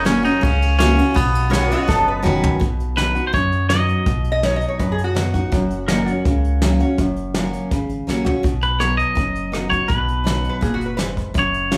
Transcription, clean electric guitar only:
0.06 0.24 C#4 loud
0.25 0.43 D#4 loud
0.43 0.77 C#4 loud
0.79 1.17 C#4 medium
1.16 2.21 B3 loud
2.97 3.27 B4 medium
3.27 3.34 C5 medium
3.34 3.69 C#5 medium
3.69 5.30 D#5 medium
8.63 8.81 B4 medium
8.80 8.97 C#5 medium
8.97 9.67 D#5 loud
9.70 9.88 C#5 medium
9.88 10.94 B4 medium
11.39 11.77 C#5 medium

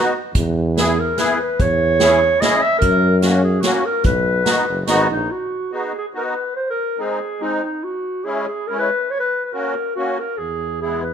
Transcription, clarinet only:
0.00 0.18 F#4 medium
0.81 1.01 G#4 medium
0.99 1.21 A#4 medium
1.19 1.41 B4 medium
1.43 1.62 B4 medium
1.61 2.42 C#5 loud
2.41 2.64 D#5 medium
2.63 2.78 E5 medium
2.79 3.18 A#4 medium
3.43 3.63 G#4 medium
3.61 3.87 F#4 medium
3.86 4.05 A#4 medium
4.05 4.84 B4 medium
5.11 5.33 D#4 medium
5.31 5.73 F#4 medium
5.74 5.94 G#4 medium
5.98 6.06 G#4 medium
6.17 6.25 A#4 medium
6.26 6.55 B4 medium
6.56 6.67 C5 medium
6.70 7.02 A#4 medium
7.01 7.44 G#4 medium
7.42 7.64 D#4 medium
7.64 7.86 D#4 medium
7.84 8.26 F#4 medium
8.25 8.47 G#4 medium
8.48 8.69 G#4 medium
8.68 8.78 A#4 medium
8.79 9.12 B4 medium
9.11 9.19 C#5 medium
9.20 9.44 B4 medium
9.44 9.55 B4 medium
9.53 9.96 A#4 medium
9.96 10.21 F#4 medium
10.20 10.39 A#4 medium
10.38 10.81 G#4 medium
10.81 11.03 G#4 medium
11.03 11.14 B4 medium

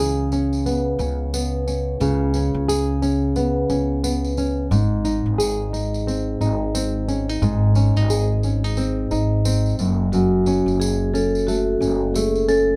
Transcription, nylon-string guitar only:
0.00 2.00 C#3 medium
0.00 0.10 E3 medium
0.00 0.31 C#4 medium
0.00 2.68 G#4 medium
0.33 0.99 C#4 medium
0.66 1.33 B3 medium
1.00 1.66 C#4 medium
1.34 3.35 B3 medium
1.68 2.34 C#4 medium
2.01 4.72 C#3 medium
2.35 3.01 C#4 medium
2.68 5.38 G#4 medium
3.02 3.69 C#4 medium
3.36 4.03 B3 medium
3.70 4.37 C#4 medium
4.04 4.80 B3 medium
4.38 4.80 C#4 medium
4.71 7.41 G#2 medium
5.05 5.72 D#4 medium
5.38 8.09 G#4 medium
5.73 6.40 D#4 medium
6.07 6.73 C4 medium
6.41 7.08 D#4 medium
6.75 8.76 C4 medium
7.08 7.29 C#4 medium
7.29 7.75 D#4 soft
7.42 9.79 G#2 medium
7.76 7.97 C#4 medium
7.97 8.44 D#4 soft
8.10 9.87 G#4 medium
8.44 8.64 C#4 medium
8.64 9.10 D#4 soft
8.77 9.44 C4 medium
9.11 9.87 D#4 medium
9.45 9.87 C4 medium
9.79 10.12 F#2 medium
10.13 12.76 F#2 medium
10.47 11.14 C#4 medium
11.14 11.81 C#4 medium
11.48 12.15 A3 medium
11.81 12.48 C#4 medium
12.16 12.76 A3 medium
12.48 12.76 C#4 medium

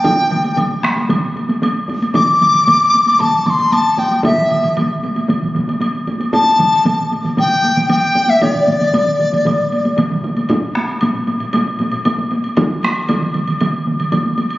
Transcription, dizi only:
0.00 0.57 G5 medium
2.14 3.21 D6 medium
3.20 3.48 A5 medium
3.46 3.74 C6 medium
3.46 3.51 D6 medium
3.72 4.00 A5 medium
3.99 4.24 G5 medium
4.24 4.73 E5 medium
6.34 7.08 A5 medium
7.40 7.87 G5 medium
7.91 8.31 G5 medium
8.30 8.44 E5 medium
8.43 9.98 D5 medium

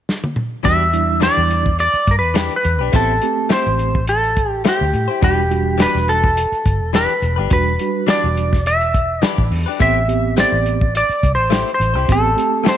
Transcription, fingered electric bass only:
0.65 1.27 E2 medium
1.37 1.87 E2 medium
1.94 muted fingered electric bass stroke soft
2.07 2.23 G2 medium
2.23 2.48 E2 medium
2.65 2.81 E2 medium
2.81 2.92 B1 medium
2.93 3.18 A1 medium
3.66 4.65 A1 medium
4.81 4.92 D2 medium
4.94 5.07 A2 medium
5.23 5.85 E1 loud
5.95 6.44 E1 medium
6.52 muted fingered electric bass stroke soft
6.66 6.80 G1 medium
6.80 7.05 E1 medium
7.22 7.38 E1 medium
7.38 7.50 G1 medium
7.51 7.76 E1 medium
8.24 9.22 E1 medium
9.38 9.50 A1 medium
9.51 9.64 E2 medium
9.81 10.43 A1 medium
10.52 11.02 A1 medium
11.09 muted fingered electric bass stroke soft
11.23 11.37 C2 medium
11.37 11.62 A1 medium
11.80 11.95 A1 medium
11.95 12.06 C2 medium
12.09 12.34 A1 medium

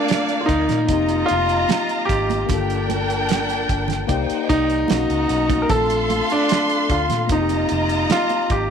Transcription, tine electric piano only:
0.00 0.84 A3 medium
0.00 0.86 C4 medium
0.00 0.88 F4 medium
0.00 0.87 D5 medium
0.85 2.44 A#3 medium
0.85 2.45 C4 medium
0.90 2.46 D#4 medium
0.90 2.48 G4 medium
2.46 4.05 A#3 medium
2.46 4.06 D4 medium
2.51 4.07 F4 medium
2.51 4.08 A4 medium
4.08 4.87 A#3 medium
4.08 4.89 D#4 medium
4.08 4.91 G4 medium
4.08 4.89 D5 medium
4.88 5.69 A#3 medium
4.88 5.70 C#4 medium
4.88 5.70 D#4 medium
4.88 5.71 F#4 medium
5.67 7.26 A3 medium
5.67 7.27 C4 medium
5.73 7.28 D4 medium
5.73 7.30 F4 medium
7.27 8.70 A#3 medium
7.27 8.70 C4 medium
7.32 8.70 D#4 medium
7.32 7.39 F4 medium
7.42 8.70 G4 medium

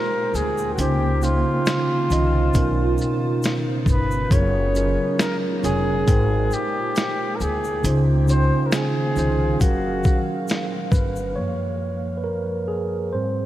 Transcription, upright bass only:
0.34 0.74 D2 medium
0.78 1.42 C#2 medium
2.10 2.51 C2 medium
2.55 2.95 B1 medium
3.86 4.27 G1 medium
4.31 4.95 F#1 loud
5.64 6.04 F1 medium
6.08 6.48 G#1 medium
7.40 7.81 D2 medium
7.84 8.48 C#2 loud
9.16 9.61 C2 medium
9.61 10.01 F#1 medium
10.92 11.33 G1 medium

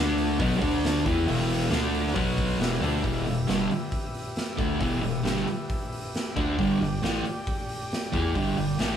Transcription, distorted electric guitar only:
0.00 0.39 D3 medium
0.00 0.40 A3 medium
0.00 0.40 D4 medium
0.39 0.61 B2 medium
0.39 0.61 F#3 loud
0.39 0.62 B3 loud
0.61 1.04 D3 medium
0.61 1.05 A3 loud
0.61 1.05 D4 medium
1.05 1.27 E3 loud
1.05 1.27 B3 medium
1.05 1.28 E4 loud
1.26 1.70 E2 loud
1.26 1.70 B2 loud
1.26 1.71 E3 loud
1.70 2.14 D3 medium
1.70 2.14 A3 medium
1.70 2.15 D4 medium
2.14 2.58 B2 medium
2.14 2.59 F#3 medium
2.14 2.59 B3 loud
2.59 2.81 E2 medium
2.59 2.81 B2 medium
2.59 2.81 E3 medium
2.81 3.03 D3 loud
2.81 3.03 A3 loud
2.81 3.04 D4 loud
3.03 3.24 E2 loud
3.03 3.25 B2 loud
3.03 3.26 E3 loud
3.25 3.43 E2 medium
3.25 3.44 B2 medium
3.47 3.69 G2 medium
3.47 3.69 D3 loud
3.47 3.70 G3 medium
4.57 4.79 D3 loud
4.57 4.80 A3 loud
4.57 4.80 D4 loud
4.79 5.00 E2 loud
4.79 5.01 B2 loud
4.79 5.03 E3 loud
5.01 5.20 E2 medium
5.01 5.20 B2 medium
5.23 5.46 G2 loud
5.23 5.46 D3 medium
5.23 5.46 G3 medium
6.36 6.57 D3 medium
6.36 6.58 A3 medium
6.36 6.58 D4 loud
6.57 6.79 G2 loud
6.57 6.79 D3 loud
6.57 6.80 G3 loud
6.80 6.98 G2 medium
6.80 6.98 D3 medium
7.03 7.24 A2 medium
7.03 7.24 E3 medium
7.03 7.24 A3 loud
8.12 8.34 E3 medium
8.12 8.34 B3 loud
8.12 8.35 E4 medium
8.35 8.56 G2 loud
8.35 8.56 D3 loud
8.35 8.57 G3 loud
8.57 8.75 G2 medium
8.57 8.75 D3 medium
8.79 8.97 A2 medium
8.79 8.97 E3 medium
8.79 8.97 A3 loud

